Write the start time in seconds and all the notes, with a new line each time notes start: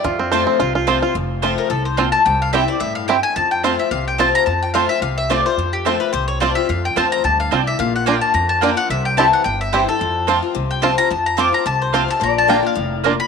Already playing: D5
0.04 F2 F4
0.19 C4
0.32 F3 A3 C4 F4 C5 A5
0.47 C4
0.60 C2 C3 F4
0.75 F4
0.87 F3 A3 C4 F4 C5 A5
1.02 C4 F4
1.15 F1 F2
1.42 F3 A3 C4 F4 C5 A5
1.58 A#4
1.70 C2 A2 A4
1.85 C5
1.97 A#2 C4 F4 C5 F5 A5
2.12 A5
2.26 C2 C3 G5
2.42 F5
2.53 E3 G3 C4 E4 G4 C5 E5 G5
2.68 C4 E4 D5
2.80 G2 A2 E5
2.95 F5
3.08 G2 C4 E4 G4 C5 G5
3.23 G#5
3.36 F2 A5
3.51 G5
3.63 F3 A3 C4 F4 C5 F5 A5
3.79 C4 F4 E5
3.91 C2 C3 F5
4.08 G5
4.18 F3 A3 C4 F4 C5 A5
4.35 A#5
4.46 F2 A5
4.62 G5
4.74 F3 A3 C4 F4 C5 F5 A5
4.89 C4 F4 E5
5.01 C2 C3 F5
5.18 E5
5.30 F3 A3 C4 F4 C5 D5 A5
5.46 C4 F4 C5
5.57 F2
5.73 G4
5.85 F3 A3 C4 F4 A4 C5 A5
6.00 C4 F4 B4
6.13 C2 C3 C5
6.28 C#5
6.40 F3 A3 C4 F4 C5 D5 A5
6.55 C4 F4 E5
6.69 F2 F5
6.85 G5
6.96 E2 F3 A3 C4 F4 C5 A5
7.12 A#5
7.24 D2 G2 A5
7.40 F5
7.51 C2 A2 C4 F4 C5 D5 A5
7.67 E5
7.79 A#1 A#2 F5
7.96 F#5
8.06 D3 A#3 D4 F4 D5 G5 A#5
8.21 A5
8.34 F2 A#5
8.49 A5
8.61 D3 A#3 D4 F4 D5 G5 A#5
8.76 D4 F4 F#5
8.90 C2 C3 E5
9.05 G5
9.17 E3 G3 C4 E4 G4 C5 G5 A5
9.33 F#5
9.44 G1 G2 G5
9.61 E5
9.72 E3 G3 C4 E4 G4 C5 G5
9.88 C4 E4 A4
9.99 F2 C5
10.27 F3 A3 C4 F4 C5 A5
10.42 C4 F4
10.55 C2 C3
10.71 G5
10.82 F3 A3 C4 F4 C5 A5
10.98 C4 F4 A#5
11.10 F2 A5
11.26 A#5
11.37 F3 A3 C4 F4 C5 A5 D6
11.53 C4 F4 A#5
11.65 C2 C3 A5
11.82 C5
11.93 F3 A3 C4 F4 C5 F5 A5
12.08 C4 F4 A5
12.20 A#1 A#2 D5 A#5
12.38 A5
12.48 D3 A#3 D4 F4 D5 G5 A#5
12.63 D4 F4 F5
12.75 F1 A2
13.04 A#2 A#3 D4 F4 D5 A#5
13.20 B5